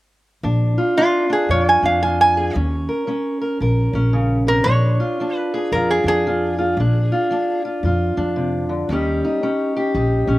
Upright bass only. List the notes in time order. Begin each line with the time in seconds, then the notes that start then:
0.43 A#1
1.49 F2
1.83 F2
2.55 D#2
3.60 A#1
3.93 A#1
4.65 A#1
5.72 F2
6.04 F2
6.77 A#1
7.83 F2
8.17 F2
8.89 D#2
9.95 A#1
10.27 A#1